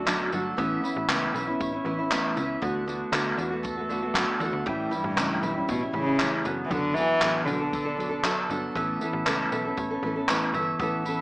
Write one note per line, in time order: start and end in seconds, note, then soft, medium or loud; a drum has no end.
0.00 0.28 D2 loud
0.00 0.58 B3 medium
0.00 0.63 D4 medium
0.00 0.32 F#5 medium
0.05 0.32 B2 medium
0.05 0.30 F#3 medium
0.05 0.31 A3 medium
0.05 0.33 D4 medium
0.05 0.33 F#4 medium
0.05 1.60 A4 medium
0.05 clap medium
0.05 tambourine medium
0.32 0.54 G1 loud
0.32 0.57 F#3 medium
0.32 0.58 A3 medium
0.32 0.58 D4 medium
0.32 0.58 F#4 medium
0.32 0.58 F#5 medium
0.32 tambourine soft
0.57 0.79 A1 loud
0.57 0.83 A2 medium
0.57 0.81 E3 medium
0.57 0.82 B3 medium
0.57 2.61 B3 medium
0.57 0.83 C#4 medium
0.57 0.84 E4 medium
0.57 1.08 E5 medium
0.57 kick medium
0.57 tambourine soft
0.82 1.08 E3 medium
0.82 1.09 B3 medium
0.82 1.09 C#4 medium
0.82 1.34 E4 medium
0.82 1.10 E4 medium
0.82 tambourine soft
0.96 1.07 A1 medium
1.08 1.30 C#2 medium
1.08 1.34 A2 medium
1.08 1.33 E3 medium
1.08 1.34 B3 medium
1.08 1.35 C#4 medium
1.08 1.36 E4 medium
1.08 2.36 E5 medium
1.08 clap loud
1.08 tambourine medium
1.34 1.55 B1 medium
1.34 1.47 E3 medium
1.34 1.48 B3 medium
1.34 1.48 C#4 medium
1.34 1.84 E4 medium
1.34 1.46 E4 medium
1.34 tambourine soft
1.47 1.75 B3 soft
1.47 1.73 C#4 medium
1.47 1.71 E4 medium
1.60 1.81 A1 medium
1.60 2.10 C#5 medium
1.60 kick medium
1.60 tambourine soft
1.72 1.85 B3 soft
1.72 1.86 C#4 soft
1.72 1.86 E4 medium
1.85 2.27 A1 medium
1.85 1.98 E3 medium
1.85 1.99 B3 medium
1.85 1.99 C#4 medium
1.85 2.67 E4 medium
1.85 1.97 E4 medium
1.98 2.11 B3 soft
1.98 2.12 C#4 soft
1.98 2.11 E4 medium
2.11 2.37 A2 medium
2.11 2.36 E3 medium
2.11 2.37 B3 medium
2.11 2.38 C#4 medium
2.11 2.38 E4 medium
2.11 2.67 C#5 medium
2.11 clap loud
2.11 tambourine medium
2.37 2.58 C#2 medium
2.37 2.61 E3 medium
2.37 2.62 B3 medium
2.37 2.63 C#4 medium
2.37 2.63 E4 medium
2.37 2.62 E5 medium
2.37 tambourine soft
2.62 3.04 D2 loud
2.62 2.85 D3 medium
2.62 2.86 A3 medium
2.62 4.66 B3 medium
2.62 2.87 B3 medium
2.62 2.88 F#4 medium
2.62 3.12 F#5 medium
2.62 kick medium
2.62 tambourine soft
2.86 3.11 D3 medium
2.86 3.12 A3 medium
2.86 3.12 B3 medium
2.86 3.37 D4 medium
2.86 3.13 F#4 medium
2.86 tambourine soft
3.12 3.34 D2 loud
3.12 3.37 D3 medium
3.12 3.38 A3 medium
3.12 3.39 B3 medium
3.12 3.40 F#4 medium
3.12 4.39 F#5 medium
3.12 clap loud
3.12 tambourine medium
3.38 4.11 E2 medium
3.38 3.51 D3 medium
3.38 3.52 A3 medium
3.38 3.51 B3 medium
3.38 3.88 D4 medium
3.38 3.49 F#4 medium
3.38 tambourine soft
3.51 3.78 A3 soft
3.51 3.78 B3 soft
3.51 3.76 F#4 medium
3.63 4.14 A4 medium
3.63 kick medium
3.63 tambourine soft
3.77 3.89 A3 soft
3.77 3.90 B3 soft
3.77 3.90 F#4 medium
3.89 4.02 D3 medium
3.89 4.03 A3 medium
3.89 4.03 B3 medium
3.89 4.72 D4 medium
3.89 4.02 F#4 medium
3.89 tambourine soft
4.03 4.15 A3 soft
4.03 4.15 B3 soft
4.03 4.16 F#4 medium
4.14 4.25 F#2 medium
4.14 4.41 D3 medium
4.14 4.42 A3 medium
4.14 4.42 B3 medium
4.14 5.20 A4 medium
4.14 clap loud
4.14 tambourine medium
4.18 4.42 F#4 medium
4.40 4.51 E2 medium
4.40 4.67 D3 medium
4.40 4.67 A3 medium
4.40 4.68 B3 medium
4.40 4.66 F#5 medium
4.40 tambourine soft
4.45 4.68 F#4 medium
4.53 4.64 D2 medium
4.66 4.88 A1 medium
4.66 4.92 A2 medium
4.66 4.90 E3 medium
4.66 6.45 G3 medium
4.66 4.91 G3 medium
4.66 4.92 C#4 medium
4.66 4.93 E4 loud
4.66 5.16 G5 medium
4.66 kick medium
4.91 5.65 G2 medium
4.91 5.17 E3 medium
4.91 5.17 G3 medium
4.91 5.18 C#4 medium
4.91 5.42 E4 medium
4.91 5.18 E4 medium
4.91 tambourine soft
5.04 5.15 A1 loud
5.17 5.38 C#2 loud
5.17 5.43 A2 medium
5.17 5.42 E3 medium
5.17 5.43 G3 medium
5.17 5.44 C#4 medium
5.17 5.44 E4 medium
5.17 6.50 G5 medium
5.17 clap loud
5.17 tambourine medium
5.43 5.64 B1 medium
5.43 5.56 E3 medium
5.43 5.57 G3 soft
5.43 5.56 C#4 medium
5.43 5.92 E4 medium
5.43 5.54 E4 medium
5.43 tambourine soft
5.55 5.83 G3 soft
5.55 5.82 C#4 soft
5.55 5.80 E4 soft
5.69 5.90 A1 loud
5.69 5.81 B2 medium
5.69 6.18 C#5 medium
5.69 kick medium
5.69 tambourine soft
5.81 5.93 G3 soft
5.81 5.94 C#4 soft
5.81 5.94 E4 medium
5.93 6.36 A1 loud
5.93 6.42 C#3 medium
5.93 6.07 E3 soft
5.93 6.07 G3 medium
5.93 6.07 C#4 medium
5.93 6.50 E4 medium
5.93 6.06 E4 medium
6.07 6.20 G3 soft
6.07 6.21 C#4 soft
6.07 6.20 E4 soft
6.20 6.45 A2 medium
6.20 6.44 E3 medium
6.20 6.46 G3 medium
6.20 6.47 C#4 medium
6.20 6.47 E4 medium
6.20 6.51 C#5 medium
6.20 clap medium
6.20 tambourine medium
6.44 6.66 F#1 loud
6.44 6.69 F#3 medium
6.44 6.71 B3 medium
6.44 6.70 B3 medium
6.44 6.71 D4 medium
6.44 6.71 A4 medium
6.44 tambourine soft
6.65 6.72 E3 medium
6.70 7.13 F#1 loud
6.70 6.96 D3 medium
6.70 6.95 F#3 medium
6.70 8.76 B3 medium
6.70 6.96 B3 medium
6.70 6.97 D4 medium
6.70 6.97 A4 medium
6.70 7.21 F#5 medium
6.70 kick medium
6.70 tambourine soft
6.94 7.45 E3 loud
6.94 7.20 F#3 medium
6.94 7.21 B3 medium
6.94 7.47 D4 medium
6.94 tambourine soft
6.98 7.22 D4 medium
6.98 7.23 A4 medium
7.21 7.43 A1 medium
7.21 7.46 F#3 medium
7.21 7.47 B3 medium
7.21 7.48 D4 medium
7.21 7.49 A4 medium
7.21 8.49 F#5 medium
7.21 clap loud
7.21 tambourine medium
7.45 8.46 B1 medium
7.45 8.45 D3 medium
7.45 7.60 F#3 soft
7.45 7.61 B3 medium
7.45 7.99 D4 medium
7.45 tambourine soft
7.49 7.61 D4 medium
7.49 7.59 A4 medium
7.60 7.87 B3 soft
7.60 7.86 D4 soft
7.60 7.84 A4 medium
7.73 8.25 A4 medium
7.73 kick medium
7.73 tambourine soft
7.85 7.97 B3 soft
7.85 7.98 D4 soft
7.85 7.98 A4 medium
7.97 8.10 F#3 medium
7.97 8.11 B3 medium
7.97 8.10 D4 soft
7.97 8.81 D4 medium
7.97 8.08 A4 medium
7.97 tambourine soft
8.09 8.23 B3 soft
8.09 8.23 D4 medium
8.09 8.23 A4 medium
8.23 8.48 F#3 medium
8.23 8.49 B3 medium
8.23 8.50 D4 medium
8.23 9.77 A4 medium
8.23 8.50 A4 medium
8.23 clap medium
8.23 tambourine medium
8.49 8.71 G1 medium
8.49 8.75 F#3 medium
8.49 8.75 B3 medium
8.49 8.76 D4 medium
8.49 8.76 A4 medium
8.49 8.76 F#5 medium
8.49 tambourine soft
8.75 8.96 A1 loud
8.75 9.01 A2 medium
8.75 8.99 E3 medium
8.75 10.79 B3 medium
8.75 9.01 B3 medium
8.75 9.02 C#4 medium
8.75 9.02 A4 medium
8.75 9.25 E5 medium
8.75 kick medium
8.75 tambourine soft
9.01 9.26 E3 medium
9.01 9.26 B3 medium
9.01 9.27 C#4 medium
9.01 9.51 E4 medium
9.01 9.27 A4 medium
9.01 tambourine soft
9.13 9.24 A1 loud
9.26 9.47 C#2 medium
9.26 9.52 A2 medium
9.26 9.50 E3 medium
9.26 9.51 B3 medium
9.26 9.52 C#4 medium
9.26 9.53 A4 medium
9.26 10.54 E5 medium
9.26 clap loud
9.26 tambourine medium
9.51 9.73 B1 medium
9.51 9.64 E3 medium
9.51 9.65 B3 medium
9.51 9.65 C#4 medium
9.51 10.02 E4 medium
9.51 9.64 A4 medium
9.51 tambourine soft
9.65 9.92 B3 soft
9.65 9.91 C#4 soft
9.65 9.89 A4 medium
9.77 9.99 A1 loud
9.77 10.28 C#5 medium
9.77 kick medium
9.77 tambourine soft
9.91 10.03 B3 soft
9.91 10.04 C#4 soft
9.91 10.03 A4 medium
10.03 10.45 A1 medium
10.03 10.16 E3 medium
10.03 10.17 B3 medium
10.03 10.16 C#4 medium
10.03 11.04 E4 soft
10.03 10.15 A4 medium
10.16 10.29 B3 medium
10.16 10.29 C#4 soft
10.16 10.29 A4 medium
10.29 10.54 A2 medium
10.29 10.54 E3 medium
10.29 10.55 B3 medium
10.29 10.55 C#4 medium
10.29 10.55 A4 medium
10.29 11.21 C#5 medium
10.29 clap medium
10.29 tambourine medium
10.54 10.75 G1 loud
10.54 10.80 E3 medium
10.54 10.81 B3 medium
10.54 10.81 C#4 medium
10.54 10.79 E5 medium
10.54 tambourine soft
10.59 10.82 A4 medium
10.79 11.21 A1 medium
10.79 11.05 A2 medium
10.79 11.04 E3 medium
10.79 11.21 B3 medium
10.79 11.06 B3 medium
10.79 11.06 C#4 medium
10.79 11.07 A4 medium
10.79 11.21 E5 medium
10.79 kick loud
10.79 tambourine soft
11.05 11.21 E3 medium
11.05 11.21 B3 medium
11.05 11.21 C#4 medium
11.05 11.21 E4 medium
11.05 11.21 A4 medium
11.05 tambourine soft